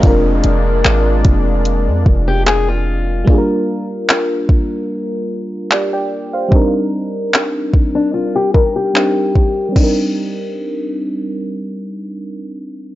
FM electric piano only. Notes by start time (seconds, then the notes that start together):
Already playing: D#5
0.00 G#3 C4 D4
0.05 F4 A#4
3.24 G3 A#3 D4
3.30 F4 G#4
3.38 A#4
5.71 G4 D5
5.93 D5 G5
6.33 C5 F5
6.48 G3 C4 D4
6.54 D#4 A#4
8.93 G3 C4 D4 D#4 A#4
9.69 G3 C4
9.76 D4 D#4
9.83 A#4